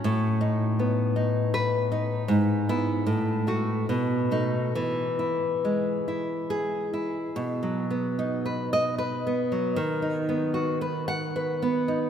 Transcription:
\new Staff \with { instrumentName = "Nylon-string guitar" } { \time 3/4 \key e \major \tempo 4 = 75 << { r2 b'4 | r8 e'8 r8 fis'8 r8 dis'8 | r2 gis'4 | \key b \major r4 \tuplet 3/2 { r4 dis''8 } r4 |
r4 \tuplet 3/2 { r4 fis''8 } r4 | } \\ { a,8 dis'8 b8 dis'4 dis'8 | gis,8 b8 a,8 a8 b,8 a8 | e8 e'8 gis8 e'4 e'8 | \tuplet 3/2 { b,8 fis8 b8 dis'8 b'4 b'8 b8 fis8 } |
\tuplet 3/2 { dis8 dis'8 b8 fis'8 b'4 b'8 b8 dis'8 } | } >> }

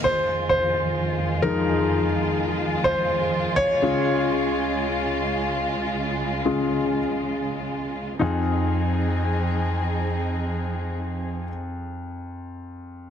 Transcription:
<<
  \new Staff \with { instrumentName = "Grand piano" } { \time 4/4 \key f \minor \tempo 4 = 55 c''8 c''4 bes'4. c''8. des''16~ | des''2. r4 | <ees' f' aes'>1 | }
  \new Staff \with { instrumentName = "Grand piano" } { \clef bass \time 4/4 \key f \minor r4. <f aes ees'>8 r2 | <des aes f'>4. r4 <des aes f'>8 r4 | f,1 | }
  \new Staff \with { instrumentName = "String section" } { \clef bass \time 4/4 \key f \minor << { <aes f'>1~ | <aes f'>1 | <f c' ees' aes'>1 | } \\ { <f, ees>1 | <des, des>1 | r1 | } >> }
>>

